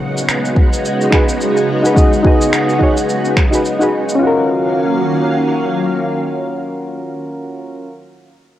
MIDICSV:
0, 0, Header, 1, 5, 480
1, 0, Start_track
1, 0, Key_signature, -6, "minor"
1, 0, Tempo, 560748
1, 1681, Time_signature, 4, 2, 24, 8
1, 7356, End_track
2, 0, Start_track
2, 0, Title_t, "Synth keys"
2, 0, Program_c, 0, 88
2, 947, Note_on_c, 0, 63, 76
2, 960, Note_on_c, 0, 66, 67
2, 971, Note_on_c, 0, 68, 69
2, 982, Note_on_c, 0, 71, 87
2, 1043, Note_off_c, 0, 63, 0
2, 1049, Note_off_c, 0, 66, 0
2, 1054, Note_off_c, 0, 68, 0
2, 1060, Note_off_c, 0, 71, 0
2, 1562, Note_on_c, 0, 63, 62
2, 1573, Note_on_c, 0, 66, 57
2, 1585, Note_on_c, 0, 68, 60
2, 1596, Note_on_c, 0, 71, 69
2, 1636, Note_off_c, 0, 63, 0
2, 1642, Note_off_c, 0, 66, 0
2, 1648, Note_off_c, 0, 68, 0
2, 1653, Note_off_c, 0, 71, 0
2, 1665, Note_on_c, 0, 63, 80
2, 1675, Note_on_c, 0, 66, 73
2, 1687, Note_on_c, 0, 68, 69
2, 1697, Note_on_c, 0, 75, 88
2, 1813, Note_off_c, 0, 63, 0
2, 1818, Note_off_c, 0, 66, 0
2, 1824, Note_off_c, 0, 68, 0
2, 1829, Note_off_c, 0, 75, 0
2, 1907, Note_on_c, 0, 63, 87
2, 1918, Note_on_c, 0, 66, 75
2, 1931, Note_on_c, 0, 68, 79
2, 1942, Note_on_c, 0, 75, 93
2, 2369, Note_off_c, 0, 63, 0
2, 2374, Note_off_c, 0, 66, 0
2, 2381, Note_off_c, 0, 68, 0
2, 2387, Note_off_c, 0, 75, 0
2, 2389, Note_on_c, 0, 63, 82
2, 2401, Note_on_c, 0, 66, 67
2, 2409, Note_on_c, 0, 68, 66
2, 2422, Note_on_c, 0, 73, 84
2, 2535, Note_off_c, 0, 63, 0
2, 2541, Note_off_c, 0, 66, 0
2, 2545, Note_off_c, 0, 68, 0
2, 2552, Note_off_c, 0, 73, 0
2, 3005, Note_on_c, 0, 63, 59
2, 3016, Note_on_c, 0, 66, 56
2, 3027, Note_on_c, 0, 68, 60
2, 3039, Note_on_c, 0, 71, 69
2, 3078, Note_off_c, 0, 63, 0
2, 3083, Note_off_c, 0, 66, 0
2, 3089, Note_off_c, 0, 68, 0
2, 3095, Note_off_c, 0, 71, 0
2, 3247, Note_on_c, 0, 63, 66
2, 3257, Note_on_c, 0, 66, 63
2, 3270, Note_on_c, 0, 68, 63
2, 3280, Note_on_c, 0, 71, 72
2, 3319, Note_off_c, 0, 63, 0
2, 3324, Note_off_c, 0, 66, 0
2, 3331, Note_off_c, 0, 68, 0
2, 3335, Note_off_c, 0, 71, 0
2, 3553, Note_on_c, 0, 61, 74
2, 3586, Note_on_c, 0, 65, 65
2, 3620, Note_on_c, 0, 66, 68
2, 3654, Note_on_c, 0, 70, 82
2, 6747, Note_off_c, 0, 61, 0
2, 6763, Note_off_c, 0, 65, 0
2, 6780, Note_off_c, 0, 66, 0
2, 6797, Note_off_c, 0, 70, 0
2, 7356, End_track
3, 0, Start_track
3, 0, Title_t, "Synth texture"
3, 0, Program_c, 1, 99
3, 0, Note_on_c, 1, 54, 83
3, 0, Note_on_c, 1, 78, 83
3, 3610, Note_off_c, 1, 78, 0
3, 3611, Note_off_c, 1, 54, 0
3, 7356, End_track
4, 0, Start_track
4, 0, Title_t, "String machine"
4, 0, Program_c, 2, 50
4, 0, Note_on_c, 2, 49, 77
4, 0, Note_on_c, 2, 56, 70
4, 0, Note_on_c, 2, 59, 70
4, 0, Note_on_c, 2, 63, 68
4, 0, Note_on_c, 2, 66, 77
4, 3568, Note_off_c, 2, 56, 0
4, 3569, Note_off_c, 2, 59, 0
4, 3569, Note_off_c, 2, 66, 0
4, 3570, Note_off_c, 2, 49, 0
4, 3570, Note_off_c, 2, 63, 0
4, 3603, Note_on_c, 2, 51, 67
4, 3603, Note_on_c, 2, 58, 63
4, 3603, Note_on_c, 2, 61, 67
4, 3603, Note_on_c, 2, 77, 65
4, 3604, Note_on_c, 2, 54, 75
4, 6172, Note_off_c, 2, 51, 0
4, 6172, Note_off_c, 2, 61, 0
4, 6172, Note_off_c, 2, 77, 0
4, 6173, Note_off_c, 2, 54, 0
4, 6173, Note_off_c, 2, 58, 0
4, 7356, End_track
5, 0, Start_track
5, 0, Title_t, "Drums"
5, 149, Note_on_c, 9, 69, 56
5, 235, Note_off_c, 9, 69, 0
5, 245, Note_on_c, 9, 26, 68
5, 249, Note_on_c, 9, 69, 45
5, 330, Note_off_c, 9, 26, 0
5, 335, Note_off_c, 9, 69, 0
5, 387, Note_on_c, 9, 69, 29
5, 473, Note_off_c, 9, 69, 0
5, 483, Note_on_c, 9, 36, 93
5, 568, Note_off_c, 9, 36, 0
5, 626, Note_on_c, 9, 69, 53
5, 712, Note_off_c, 9, 69, 0
5, 730, Note_on_c, 9, 69, 47
5, 816, Note_off_c, 9, 69, 0
5, 866, Note_on_c, 9, 69, 27
5, 952, Note_off_c, 9, 69, 0
5, 962, Note_on_c, 9, 36, 80
5, 963, Note_on_c, 9, 26, 64
5, 1048, Note_off_c, 9, 26, 0
5, 1048, Note_off_c, 9, 36, 0
5, 1104, Note_on_c, 9, 69, 59
5, 1189, Note_off_c, 9, 69, 0
5, 1207, Note_on_c, 9, 69, 43
5, 1292, Note_off_c, 9, 69, 0
5, 1344, Note_on_c, 9, 69, 29
5, 1430, Note_off_c, 9, 69, 0
5, 1586, Note_on_c, 9, 69, 56
5, 1672, Note_off_c, 9, 69, 0
5, 1682, Note_on_c, 9, 36, 109
5, 1689, Note_on_c, 9, 69, 48
5, 1768, Note_off_c, 9, 36, 0
5, 1774, Note_off_c, 9, 69, 0
5, 1826, Note_on_c, 9, 69, 29
5, 1911, Note_off_c, 9, 69, 0
5, 1922, Note_on_c, 9, 36, 87
5, 2008, Note_off_c, 9, 36, 0
5, 2067, Note_on_c, 9, 69, 55
5, 2152, Note_off_c, 9, 69, 0
5, 2164, Note_on_c, 9, 26, 71
5, 2169, Note_on_c, 9, 69, 46
5, 2250, Note_off_c, 9, 26, 0
5, 2255, Note_off_c, 9, 69, 0
5, 2305, Note_on_c, 9, 69, 26
5, 2391, Note_off_c, 9, 69, 0
5, 2403, Note_on_c, 9, 36, 52
5, 2489, Note_off_c, 9, 36, 0
5, 2543, Note_on_c, 9, 69, 53
5, 2629, Note_off_c, 9, 69, 0
5, 2647, Note_on_c, 9, 69, 45
5, 2733, Note_off_c, 9, 69, 0
5, 2782, Note_on_c, 9, 69, 29
5, 2868, Note_off_c, 9, 69, 0
5, 2882, Note_on_c, 9, 36, 83
5, 2883, Note_on_c, 9, 26, 64
5, 2968, Note_off_c, 9, 36, 0
5, 2969, Note_off_c, 9, 26, 0
5, 3024, Note_on_c, 9, 69, 56
5, 3110, Note_off_c, 9, 69, 0
5, 3126, Note_on_c, 9, 69, 43
5, 3212, Note_off_c, 9, 69, 0
5, 3264, Note_on_c, 9, 69, 29
5, 3350, Note_off_c, 9, 69, 0
5, 3502, Note_on_c, 9, 69, 54
5, 3588, Note_off_c, 9, 69, 0
5, 7356, End_track
0, 0, End_of_file